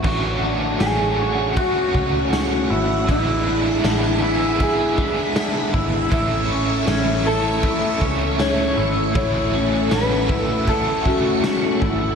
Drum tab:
CC |x-------|--------|--------|--------|
RD |--x-x-x-|x-x-x-x-|x-x-x-x-|x-x-x-x-|
TB |--x---x-|--x---x-|--x---x-|--x---x-|
SD |--o---o-|--o---o-|--o---o-|--o---o-|
BD |o---oo--|o---oo-o|o---oo--|o--ooo-o|